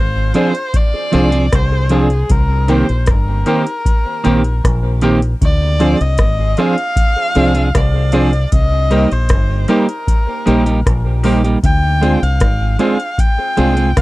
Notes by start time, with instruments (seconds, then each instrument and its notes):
Already playing: fingered electric bass G#1, erhu C5
0.34 clean electric guitar F3 C4 D4 G#4, grand piano D4 F4 G#4 C5, erhu C5, closed hi-hat
0.55 closed hi-hat
0.74 erhu D5, kick, closed hi-hat
0.94 grand piano G#4 C5
1.12 fingered electric bass C2, clean electric guitar F3 C4 D4 G#4, grand piano D4 F4 G#4 C5, closed hi-hat
1.31 clean electric guitar F3 C4 D4 G#4, closed hi-hat
1.52 fingered electric bass C2, erhu C5, kick, cross-stick, closed hi-hat
1.72 grand piano G#4 C5
1.89 clean electric guitar F3 C4 D4 G#4, grand piano D4 F4 G#4 C5, erhu G#4, closed hi-hat
2.10 closed hi-hat
2.29 fingered electric bass C2, erhu A#4, kick, closed hi-hat
2.68 clean electric guitar D#3 A#3 C4 G4, grand piano D#4 G4 A#4 C5, erhu C5, closed hi-hat
2.89 fingered electric bass A#1, closed hi-hat
3.06 fingered electric bass G1, erhu A#4, kick, cross-stick, closed hi-hat
3.46 clean electric guitar D#3 A#3 C4 G4, grand piano D#4 G4 A#4 C5, closed hi-hat
3.67 closed hi-hat
3.85 kick, closed hi-hat
4.05 grand piano A#4 C5
4.24 fingered electric bass A#1, clean electric guitar D#3 A#3 C4 G4, grand piano D#4 G4 A#4 C5, closed hi-hat
4.44 closed hi-hat
4.64 fingered electric bass A#1, kick, cross-stick, closed hi-hat
4.83 grand piano A#4 C5
5.01 clean electric guitar D#3 A#3 C4 G4, grand piano D#4 G4 A#4 C5, closed hi-hat
5.22 closed hi-hat
5.41 fingered electric bass D2, erhu D5, kick, closed hi-hat
5.79 clean electric guitar F3 C4 D4 G#4, grand piano D4 F4 G#4 C5, closed hi-hat
6.01 fingered electric bass C2, erhu D#5, closed hi-hat
6.18 fingered electric bass G#1, kick, cross-stick, closed hi-hat
6.57 clean electric guitar F3 C4 D4 G#4, grand piano D4 F4 G#4 C5, erhu F5, closed hi-hat
6.78 closed hi-hat
6.96 kick, closed hi-hat
7.16 grand piano G#4 C5
7.35 fingered electric bass C2, clean electric guitar F3 C4 D4 G#4, grand piano D4 F4 G#4 C5, closed hi-hat
7.54 clean electric guitar F3 C4 D4 G#4, closed hi-hat
7.75 fingered electric bass C2, erhu D5, kick, cross-stick, closed hi-hat
7.94 grand piano G#4 C5
8.12 clean electric guitar F3 C4 D4 G#4, grand piano D4 F4 G#4 C5, closed hi-hat
8.33 closed hi-hat
8.52 fingered electric bass C2, erhu D#5, kick, closed hi-hat
8.90 clean electric guitar G3 A#3 D#4 G4, grand piano D#4 G4 A#4 C5, closed hi-hat
9.12 fingered electric bass A#1, erhu C5, closed hi-hat
9.29 fingered electric bass G1, kick, cross-stick, closed hi-hat
9.64 erhu C5
9.68 clean electric guitar G3 A#3 D#4 G4, grand piano D#4 G4 A#4 C5, erhu A#4, closed hi-hat
9.89 closed hi-hat
10.07 kick, closed hi-hat
10.27 grand piano A#4 C5
10.46 fingered electric bass A#1, clean electric guitar G3 A#3 D#4 G4, grand piano D#4 G4 A#4 C5, closed hi-hat
10.66 clean electric guitar G3 A#3 D#4 G4, closed hi-hat
10.86 fingered electric bass A#1, kick, cross-stick, closed hi-hat
11.05 grand piano A#4 C5
11.23 clean electric guitar G3 A#3 D#4 G4, grand piano D#4 G4 A#4 C5, open hi-hat
11.44 clean electric guitar G3 A#3 D#4 G4, closed hi-hat
11.63 fingered electric bass D2, erhu G5, kick, closed hi-hat
12.01 clean electric guitar G#3 C4 F4 G#4, grand piano D4 F4 G#4 C5, closed hi-hat
12.23 fingered electric bass C2, erhu F5, closed hi-hat
12.40 fingered electric bass G#1, kick, cross-stick, closed hi-hat
12.79 clean electric guitar G#3 C4 F4 G#4, grand piano D4 F4 G#4 C5, erhu F5, closed hi-hat
13.00 closed hi-hat
13.18 erhu G5, kick, closed hi-hat
13.38 grand piano G#4 C5
13.57 fingered electric bass C2, clean electric guitar G#3 C4 F4 G#4, grand piano D4 F4 G#4 C5, closed hi-hat
13.76 clean electric guitar G#3 C4 F4 G#4, closed hi-hat
13.97 fingered electric bass C2, erhu F5, kick, cross-stick, closed hi-hat